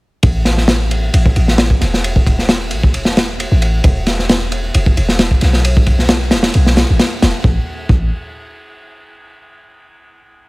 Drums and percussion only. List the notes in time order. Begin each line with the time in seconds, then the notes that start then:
0.23 kick, ride
0.45 snare, ride
0.57 snare
0.68 snare, ride
0.91 ride
1.14 ride
1.26 kick
1.36 ride
1.48 snare
1.58 snare, ride
1.70 kick
1.81 snare, ride
1.94 snare
2.04 ride
2.16 kick
2.27 kick, ride
2.39 snare
2.49 snare, ride
2.71 ride
2.83 kick
2.94 ride
3.05 snare
3.17 snare, ride
3.40 ride
3.62 ride
3.84 kick, ride
4.06 snare, ride
4.19 snare
4.29 snare, ride
4.52 ride
4.74 ride
4.86 kick
4.97 ride
5.09 snare
5.19 snare, ride
5.31 kick
5.41 snare, ride
5.53 snare
5.65 ride
5.77 kick
5.86 kick, ride
5.99 snare
6.09 snare, ride
6.31 snare, ride
6.43 snare, ride
6.54 ride
6.66 snare
6.77 snare, ride
6.99 snare, ride
7.22 snare, ride
7.44 kick
7.89 kick